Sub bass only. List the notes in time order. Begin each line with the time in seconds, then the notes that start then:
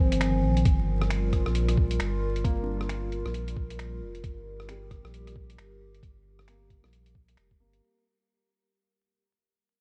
Already playing: G1
0.43 A#1
0.65 G1
1.47 A#1
2.00 G1
2.45 G1
3.25 A#1
4.02 F1
4.24 G1
5.04 A#1
5.58 G1
6.03 G1
6.84 A#1
7.38 F1
7.60 G1